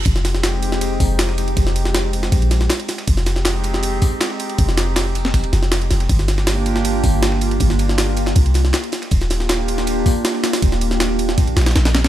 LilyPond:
<<
  \new Staff \with { instrumentName = "Ambient pad" } { \time 4/4 \key f \dorian \tempo 4 = 159 <aes c' ees' g'>2.~ <aes c' ees' g'>8 r8 | <aes c' ees' g'>2~ <aes c' ees' g'>8 r4. | <aes c' ees' g'>2.~ <aes c' ees' g'>8 r8 | <aes c' ees' g'>2~ <aes c' ees' g'>8 r4. |
<bes d' f' g'>2.~ <bes d' f' g'>8 r8 | <bes d' f' g'>2~ <bes d' f' g'>8 r4. | <bes d' f' g'>2.~ <bes d' f' g'>8 r8 | <bes d' f' g'>2~ <bes d' f' g'>8 r4. | }
  \new Staff \with { instrumentName = "808-style bass" } { \clef bass \time 4/4 \key f \dorian f,,2~ f,,8 f,,4. | f,,2 bes,,4 r4 | f,,2~ f,,8 r4. | f,,2 ees,,8 f,,4 f,,8 |
g,,2~ g,,8 g,,4. | g,,2 c,4 r4 | ees,,2~ ees,,8 r4. | ees,,2 bes,,8 bes,,8 bes,,4 | }
  \new DrumStaff \with { instrumentName = "Drums" } \drummode { \time 4/4 <hh bd cymr>16 <hh sn>16 <hh cymr sn>16 sn16 <hh cymr sn>8 <hh cymr>16 sn16 <hh cymr>8 <hh hho bd>8 <hh cymr sn>16 sn16 <hh cymr>16 cymr16 | <hh bd cymr>16 sn16 <hh cymr>16 sn16 <hh cymr sn>8 <hh cymr>16 sn16 <hh bd cymr>16 cymr16 <hh cymr sn>16 sn16 <hh cymr sn>16 cymr16 <hh cymr sn>16 <cymr sn>16 | <hh bd cymr>16 <hh sn>16 <hh cymr sn>16 sn16 <hh cymr sn>8 <hh cymr>16 sn16 <hh cymr>8 <hh hho bd>8 <hh cymr sn>16 sn16 <hh cymr>16 cymr16 | <hh bd cymr>16 sn16 <hh cymr sn>8 <hh cymr sn>8 <hh cymr>16 sn16 <hh bd cymr>16 cymr16 <hh cymr sn>16 sn16 <hh cymr sn>16 cymr16 <hh cymr sn>16 <cymr sn>16 |
<hh bd cymr>16 <hh sn>16 <hh cymr sn>16 sn16 <hh cymr sn>8 <hh cymr>16 sn16 <hh cymr>8 <hh hho bd>8 <hh cymr sn>16 sn16 <hh cymr>16 cymr16 | <hh bd cymr>16 sn16 <hh cymr>16 sn16 <hh cymr sn>8 <hh cymr>16 sn16 <hh bd cymr>16 cymr16 <hh cymr sn>16 sn16 <hh cymr sn>16 cymr16 <hh cymr sn>16 <cymr sn>16 | <hh bd cymr>16 <hh sn>16 <hh cymr sn>16 sn16 <hh cymr sn>8 <hh cymr>16 sn16 <hh cymr>8 <hh hho bd>8 <hh cymr sn>16 sn16 <hh cymr sn>16 <cymr sn>16 | <hh bd cymr>16 sn16 <hh cymr>16 sn16 <hh cymr sn>8 <hh cymr>16 sn16 <hh bd cymr>16 cymr16 <hh cymr sn>32 <hh sn>32 <hh cymr sn>32 <hh sn>32 <hh cymr sn>16 <hh cymr sn>16 <hh cymr sn>16 <hh cymr sn>16 | }
>>